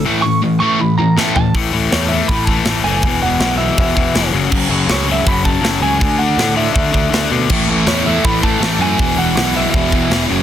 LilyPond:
<<
  \new Staff \with { instrumentName = "Lead electric guitar" } { \time 4/4 \key a \major \tempo 4 = 161 r8 cis'''8 r8 cis'''8 b''8 ais''8 a''8 a''8 | \key e \major r4 cis''8 e''8 b''8 a''4 gis''8~ | gis''8 fis''4 e''8 e''4. r8 | r4 cis''8 e''8 b''8 a''4 gis''8~ |
gis''8 fis''4 e''8 e''4. r8 | r4 cis''8 e''8 b''8 a''4 gis''8~ | gis''8 fis''4 e''8 e''4. r8 | }
  \new Staff \with { instrumentName = "Distorted electric guitar" } { \clef bass \time 4/4 \key a \major <a, e a>8 <a, e>8 <a, e>8 <a, e a>8 <a, e>8 <a, e>8 <a, e a>8 <a, e>8 | \key e \major r1 | r1 | r1 |
r1 | <a, e a>8 <a, e a>8 <a, e a>8 <a, e a>8 <a, e a>8 <a, e a>8 <a, e a>8 <a, e a>8 | <e, b, e>8 <e, b, e>8 <e, b, e>8 <e, b, e>8 <e, b, e>8 <e, b, e>8 <e, b, e>8 <fis, cis fis>8 | }
  \new Staff \with { instrumentName = "Overdriven electric guitar" } { \clef bass \time 4/4 \key a \major <a, e a>8 <a, e>8 <a, e>8 <a, e a>8 <a, e>8 <a, e>8 <a, e a>8 <a, e>8 | \key e \major <a, e a>8 <a, e a>8 <a, e a>8 <a, e a>8 <a, e a>8 <a, e a>8 <a, e a>8 <a, e a>8 | <e, b, e>8 <e, b, e>8 <e, b, e>8 <e, b, e>8 <e, b, e>8 <e, b, e>8 <e, b, e>8 <fis, cis fis>8 | <fis, cis fis>8 <fis, cis fis>8 <fis, cis fis>8 <fis, cis fis>8 <fis, cis fis>8 <fis, cis fis>8 <fis, cis fis>8 <fis, cis fis>8 |
<d a d'>8 <d a d'>8 <d a d'>8 <d a d'>8 <d a d'>8 <d a d'>8 <d a d'>8 <d a d'>8 | <a, e a>8 <a, e a>8 <a, e a>8 <a, e a>8 <a, e a>8 <a, e a>8 <a, e a>8 <a, e a>8 | <e, b, e>8 <e, b, e>8 <e, b, e>8 <e, b, e>8 <e, b, e>8 <e, b, e>8 <e, b, e>8 <fis, cis fis>8 | }
  \new Staff \with { instrumentName = "Picked electric bass" } { \clef bass \time 4/4 \key a \major r1 | \key e \major a,,8 a,,8 e,4 a,,4 a,,8 fis,,8 | e,,8 e,,8 b,,4 e,,4 f,,8 fis,,8 | fis,,8 fis,,8 cis,4 fis,,4 fis,,8 cis,8 |
d,8 d,8 a,4 d,4 d,8 b,8 | a,,8 a,,8 e,4 a,,4 a,,8 fis,8 | e,,8 e,,8 b,,4 e,,4 e,,8 fis,,8 | }
  \new DrumStaff \with { instrumentName = "Drums" } \drummode { \time 4/4 r4 r4 r4 sn8 tomfh8 | <hho bd>4 <hho sn>4 <hho bd>8 bd8 <hho sn>4 | <hho bd>4 <hho sn>4 <hho bd>8 bd8 <hho sn>4 | <cymc bd>4 <hho sn>4 <hho bd>8 bd8 <hho sn>4 |
<hho bd>4 <hho sn>4 bd8 bd8 <hho sn>4 | <cymc bd>4 <hho sn>4 <hho bd>8 bd8 <hho sn>4 | <hho bd>4 <hho sn>4 <hho bd>8 bd8 <hho sn>4 | }
>>